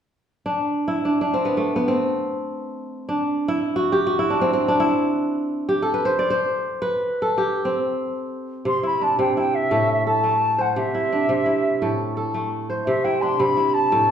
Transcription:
0.46 D4
0.88 E4
1.05 D4
1.21 D4
1.34 C4
1.45 B3
1.57 A3
1.76 B3
1.88 C4
3.09 D4
3.48 E4
3.76 F#4
3.92 G4
4.07 F#4
4.19 E4
4.30 D4
4.41 C4
4.53 C4
4.68 D4
4.80 E4
5.69 G4
5.82 A4
5.94 B4
6.05 C5
6.19 D5
6.30 C5
6.82 B4
7.22 A4
7.38 G4
7.65 C4
8.65 C3 C6
8.83 E4 B5
9.01 D4 A5
9.19 C3 G5
9.37 E4 G5
9.55 E5
9.71 A2 A4
9.92 E5
10.07 A4 A5
10.24 A3
10.58 C5 F#5
10.70 F#5
10.76 C3 E5
10.95 E4
11.12 D4
11.29 C3
11.46 E4
11.82 A2 A4
12.17 A4
12.34 A3
12.70 C5
12.86 C3 E5
13.04 E4 G5
13.22 D4 C6
13.40 C3 B5
13.57 E4
13.74 A5
13.92 A2 A4

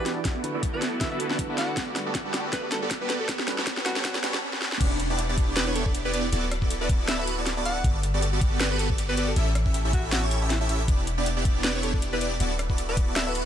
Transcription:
Already playing: E1 E3 G3 B3 D4 E4 F#4 G4, riser
0.00 D5
0.06 B3 D4 E4 G4 B4 D5, snare, closed hi-hat
0.25 D1 E3 A3 B3 E4 F#4 A4 D5, kick, snare, closed hi-hat
0.43 D3 D4 E4 F#4 B4, closed hi-hat
0.54 B3 E4 F#4 A4 D5
0.63 kick, closed hi-hat
0.72 D3 B3 D4 E4 F#4 A4 B4 D5
0.82 B3 E4 F#4 A4 D5, snare, closed hi-hat
1.00 D3 B3 D4 E4 F#4 A4 B4 D5 E5, kick, snare, closed hi-hat
1.11 B3 E4 F#4 A4 B4 E5
1.20 closed hi-hat
1.29 D3 B3 D4 E4 F#4 A4 B4 D5, snare
1.39 kick, closed hi-hat
1.48 D3 B3 D4 E4 F#4 A4 B4 D5
1.58 B3 E4 F#4 A4 D5 F#5, snare, closed hi-hat
1.77 G1 D3 G3 B3 F#4 G4 A4, kick, snare, closed hi-hat
1.95 G3 D4 F#4 A4 B4, snare, closed hi-hat
2.06 B3 F#4 G4 A4 D5
2.15 kick, snare, closed hi-hat
2.24 G3 B3 D4 F#4 G4 A4 B4 D5
2.34 B3 F#4 G4 A4 D5, snare, closed hi-hat
2.53 B3 F#4 B4 D5, kick, snare, closed hi-hat
2.63 B4
2.71 G3 D4 F#4 A4 B4, snare, closed hi-hat
2.82 B3 F#4 G4 A4 D5
2.91 kick, snare, closed hi-hat
3.00 G3 B3 D4 F#4 G4 A4 B4 D5
3.10 B3 F#4 G4 A4 B4 D5, snare, closed hi-hat
3.20 A4
3.29 A1 E3 B3 C#4 F#4 G4 A4 C#5, kick, snare, closed hi-hat
3.39 snare
3.47 G3 C#4 F#4 A4 B4, snare, closed hi-hat
3.58 B3 F#4 G4 A4 C#5, snare
3.67 C#5, kick, snare, closed hi-hat
3.77 snare
3.85 G3 C#4 F#4 A4 B4, snare, closed hi-hat
3.96 B3 F#4 G4 A4 C#5, snare
4.04 G3 B3 C#4 F#4 A4 B4, kick, snare, closed hi-hat
4.15 snare
4.23 G3 B3 C#4 F#4 G4 A4 B4 C#5, snare, closed hi-hat
4.34 snare
4.53 snare
4.62 snare
4.72 snare
4.81 E1 B3 D4 E4 G4 D5, kick, closed hi-hat, crash
5.00 closed hi-hat
5.10 B3 D4 E4 G4 D5
5.19 closed hi-hat
5.29 B3 D4 E4 G4 D5
5.38 B3 D4 E4 G4 D5, kick, closed hi-hat
5.57 B3 D4 E4 G4 B4 D5, snare, closed hi-hat
5.67 B3 D4 E4 G4 B4 C#5
5.76 A4, closed hi-hat
5.86 B3 D4 E4 G4 A4 D5, kick
5.95 closed hi-hat
6.05 B3 D4 E4 G4 B4 D5
6.13 B3 D4 E4 G4 B4 D5, closed hi-hat
6.32 D1 B3 E4 F#4 A4 D5, closed hi-hat
6.52 cross-stick, closed hi-hat
6.62 B3 E4 F#4 A4 D5, kick
6.71 closed hi-hat
6.81 B3 E4 F#4 A4 B4 D5
6.89 D5, kick, closed hi-hat
7.08 B3 E4 F#4 A4 D5 E5, snare, closed hi-hat
7.19 B3 E4 F#4 A4 B4 E5
7.27 closed hi-hat
7.38 B3 E4 F#4 A4 D5
7.46 snare, closed hi-hat
7.57 B3 E4 F#4 A4 D5
7.65 B3 E4 F#4 A4 D5 F#5, closed hi-hat
7.84 G1 B3 F#4 G4 A4 D5, kick, closed hi-hat
8.03 closed hi-hat
8.14 B3 F#4 G4 A4 D5
8.22 closed hi-hat
8.33 B3 F#4 G4 A4 D5
8.41 B3 F#4 G4 A4 D5, kick, closed hi-hat
8.60 B3 F#4 G4 A4 B4 D5, snare, closed hi-hat
8.71 B3 F#4 G4 A4 B4
8.79 A4, closed hi-hat
8.90 B3 F#4 G4 A4 D5, kick
8.98 closed hi-hat
9.09 B3 F#4 G4 A4 B4 D5
9.17 B3 F#4 G4 A4 B4 D5, closed hi-hat
9.28 A4
9.36 A1 C#4 E4 G4 A4 E5, closed hi-hat
9.55 cross-stick, closed hi-hat
9.66 C#4 E4 G4 A4 E5, kick
9.74 closed hi-hat
9.85 C#4 E4 G4 A4 E5
9.93 C#4 E4 F#4 G4 A4 E5, kick, closed hi-hat
10.12 C#4 E4 F#4 G4 A4 E5, snare, closed hi-hat
10.23 C#4 E4 G4 A4 C#5
10.31 closed hi-hat
10.42 C#4 E4 G4 A4 E5
10.50 E4, snare, closed hi-hat
10.61 C#4 E4 G4 A4 E5
10.69 C#4 E4 G4 A4 E5, closed hi-hat
10.88 E1 B3 D4 E4 G4 D5, kick, closed hi-hat
11.07 closed hi-hat
11.18 B3 D4 E4 G4 D5
11.26 closed hi-hat
11.37 B3 D4 E4 G4 D5
11.45 B3 D4 E4 G4 D5, kick, closed hi-hat
11.64 B3 D4 E4 G4 B4 D5, snare, closed hi-hat
11.75 B3 D4 E4 G4 B4 C#5
11.83 A4, closed hi-hat
11.94 B3 D4 E4 G4 A4 D5, kick
12.02 closed hi-hat
12.13 B3 D4 E4 G4 B4 D5
12.21 B3 D4 E4 G4 B4 D5, closed hi-hat
12.40 D1 B3 E4 F#4 A4 D5, closed hi-hat
12.59 cross-stick, closed hi-hat
12.70 B3 E4 F#4 A4 D5, kick
12.78 closed hi-hat
12.89 B3 E4 F#4 A4 B4 D5
12.97 B3 E4 F#4 A4 D5, kick, closed hi-hat
13.16 B3 E4 F#4 A4 D5 E5, snare, closed hi-hat
13.27 B3 E4 F#4 A4 B4 E5
13.35 closed hi-hat

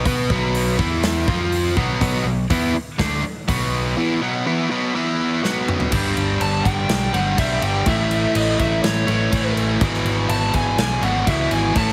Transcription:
0.05 B2 B3 F#4 B4, kick, open hi-hat
0.30 B1 B2 F#3 B3, kick
0.55 open hi-hat
0.78 E2 E3 B3 E4, kick
1.03 snare, open hi-hat
1.28 F2 F3 C4 F4, kick
1.52 open hi-hat
1.76 B1 B2 F#3 B3, kick
2.00 B1 B2 F#3 B3, kick, open hi-hat
2.25 B1 B2 F#3
2.50 E2 E3 B3 E4, kick, open hi-hat
2.74 muted picked electric bass stroke, muted overdriven electric guitar stroke
2.98 D2 D3 A3 D4, kick, snare, open hi-hat
3.24 muted overdriven electric guitar stroke, muted picked electric bass stroke
3.48 B1 B2 F#3 B3, kick, open hi-hat
3.97 E3 B3 E4
4.21 B2 F#3 B3
4.46 E3 B3 E4
4.70 B2 F#3 B3
4.94 E3 B3 E4
5.43 B2 F#3 B3, snare
5.68 mid tom
5.80 floor tom
5.92 G1 G2 D3 G3, kick, crash
6.17 G1, crash
6.41 G1 A5, crash
6.65 G1 G5, kick, crash
6.89 B1, snare, crash
7.13 G1 G2 D3 G3 F#5, crash
7.37 B1 G2 D3 G3 E5, kick, crash
7.61 G1 G5, crash
7.86 A1 A2 E3 A3 E5, kick, crash
8.11 crash
8.35 A1 D#5, crash
8.59 A1 E5, kick, crash
8.83 A1 C#5, snare, crash
9.07 A1 A2 E3 A3, crash
9.31 A1 A2 E3 A3, kick, crash
9.56 A1, crash
9.80 G#1 E2 B2 E3, kick, crash
9.94 snare
10.05 G#1, crash
10.29 G#1 A5, crash
10.54 G#1 G#5, kick, crash
10.78 B1 G#5, snare, crash
11.01 G#1 E2 B2 E3 F#5, crash
11.26 C#2 E2 B2 E3 E5, kick, crash
11.50 G#1 G#5, crash
11.75 A1 A2 E3 A3 A5, kick, crash
11.89 snare

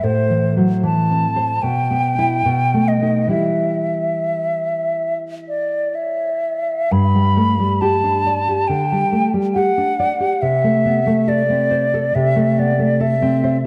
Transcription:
0.03 A2 C5
0.30 E3
0.57 F#3
0.83 E3 A5
1.10 C4
1.36 C5
1.62 B2 G5
1.91 B3
2.18 B3 E4
2.45 B2
2.74 A3
2.88 D#5
3.02 A3 D#4
3.27 E3 G3 E4
3.31 E5
5.48 D5
5.95 E5
6.91 G2 B5
7.15 G3
7.37 A3
7.59 G3
7.81 G4 A5
8.03 D4
8.26 D5
8.48 G4
8.68 D3 G5
8.92 G3
9.12 A3
9.34 G3
9.54 G4 F#5
9.78 D4
9.99 D5
10.20 G4
10.42 C3 E5
10.64 A3
10.85 B3
11.07 A3
11.28 A4 D5
11.50 C4
11.71 C5
11.94 A4
12.15 C3 E5
12.36 A3
12.58 B3 D5
12.79 A3
13.00 A4 E5
13.22 C4
13.44 C5

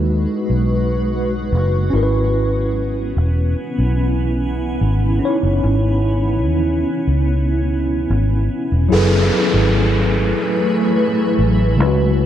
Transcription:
Already playing: D#2 G#3 D#4 F#4 B4
0.50 B1
1.52 F#1
1.90 G#1 B3 C#4 E4
1.96 A#4
2.03 B4
3.17 E1
3.79 B1
4.81 G#1
5.19 C#4 D#4
5.25 E4 C#5
5.43 F#1
5.64 G#1
6.46 D#2
7.07 C#2
8.10 G#1
8.72 E1
8.89 F#1 F#3 A3 E4 G#4 B4 G#5, downlifter
8.93 A4 B4
9.54 G#1
11.39 A1
11.76 C#2 C#3 G#3 B3 F#4
11.80 E4 B4
11.87 F#4

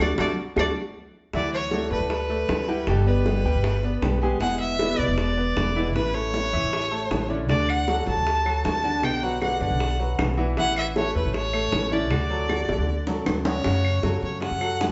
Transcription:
0.00 D2 F#3 A3 D4 F#4 D5
0.18 D2 F#3 A3 D4 F#4 D5, high bongo, claves
0.56 D2 F#3 A3 D4 F#4 D5, high bongo, claves
1.33 D2 D3 E3 F#3 A3 E4 F#4 D5 E5, high bongo
1.54 C#5
1.71 D3 F#3 A3 E4 F#4 A4 D5, high bongo
1.91 A1 A3 A4 B4 D5, high bongo
2.00 D2
2.10 B4, muted nylon-string guitar stroke, high bongo
2.29 A3 A4 D5, high bongo
2.49 D2 F#3 A3 E4 F#4, high bongo, low bongo
2.68 F#3 G3 A3 E4 F#4 G4 G5, high bongo
2.87 G1 B2 D3 G3 B3 G4 A4, high bongo
3.06 B3 B4 D5, high bongo
3.25 B2 D3 G3 B3 G4, high bongo
3.44 D2 G3 G4 G5, high bongo
3.54 G1
3.64 muted nylon-string guitar stroke, high bongo
3.83 B3 B4 D5, high bongo
4.02 B1 D3 G3 B3 G4, high bongo, low bongo
4.21 D3 G3 G#3 B3 G4 G#4 G#5
4.40 E1 B2 D3 G#3 B3 E4 G#4 F#5 G#5, high bongo
4.60 E5
4.79 B2 D3 G#3 B3 E4 B4 D5, high bongo
4.99 B1 B3 B4 D5, high bongo
5.08 E1
5.18 D5, muted nylon-string guitar stroke, high bongo
5.37 B3 B4 D5, high bongo
5.57 E1 D3 G#3 B3 E4, high bongo, low bongo
5.76 D3 E3 G#3 B3 E4 E5, high bongo
5.94 A1 E3 A3 C#4 E4 B4, high bongo
6.14 A3 A4 C#5, high bongo
6.33 E3 A3 C#4 E4, high bongo
6.53 E2 E3 E4 E5, high bongo
6.63 A1
6.72 muted nylon-string guitar stroke, high bongo
6.91 A3 A4 C#5, high bongo
7.10 A1 E3 A3 C#4 E4, high bongo, low bongo
7.29 D3 A3 C#4 D4 E4 D5
7.48 D2 D3 A3 D4 F#4 D5, high bongo
7.69 F#5, claves
7.87 D3 F#3 A3 D4 F#4 A4, high bongo
8.07 A1 F#3 F#4 A4 A5, high bongo
8.17 D2
8.25 muted nylon-string guitar stroke, high bongo
8.45 F#3 F#4 A4, high bongo, claves
8.64 D2 D3 A3 D4 F#4 A5, high bongo, low bongo
8.83 D3 A3 D4 F#4 D5, high bongo
9.02 B1 B2 D3 B3 D4 F#4 G5, high bongo, claves
9.23 F#3 F#4 B4 F#5, high bongo
9.41 B2 D3 B3 D4 F#4 F#5, high bongo, claves
9.61 F#2 D3 D4 D5 F#5, high bongo
9.71 B1
9.80 muted nylon-string guitar stroke, high bongo
9.99 F#3 F#4 B4, high bongo
10.18 B1 D3 B3 D4 F#4, high bongo, low bongo, claves
10.37 D3 E3 B3 D4 E4 F#4 E5
10.57 A1 E3 A3 C#4 E4 E5 F#5, high bongo
10.76 E5, claves
10.96 E3 A3 C#4 E4 A4 C#5, high bongo
11.15 E2 A3 A4 B4 C#5, high bongo
11.25 A1
11.34 C#5, muted nylon-string guitar stroke, high bongo
11.53 A3 A4 C#5, high bongo, claves
11.72 A1 E3 A3 C#4 E4, high bongo, low bongo
11.91 D3 A3 C#4 D4 E4 D5, high bongo
12.11 D2 D3 A3 D4 F#4, high bongo, claves
12.30 F#3 F#4 A4, high bongo
12.48 D3 A3 D4 F#4, high bongo, claves
12.69 A1 D3 D4 D5, high bongo
12.78 D2
12.87 muted nylon-string guitar stroke
13.07 F#3 F#4 A4, low bongo
13.26 D2 D3 A3 D4 F#4, low bongo, claves
13.45 C#3 A3 C#4 D4 F#4 C#5, low bongo
13.64 F#2 C#3 F#3 A3 C#4 F#4 C#5, high bongo
13.85 claves
14.02 F#2 C#3 F#3 A3 C#4 F#4 A4, high bongo
14.22 F#2 C#5, high bongo
14.41 C#3 C#4 C#5 F#5, muted nylon-string guitar stroke, high bongo
14.51 F#2
14.61 F#3 F#4 A4, high bongo, claves
14.80 F#3 A3 C#4 F#4, high bongo, low bongo

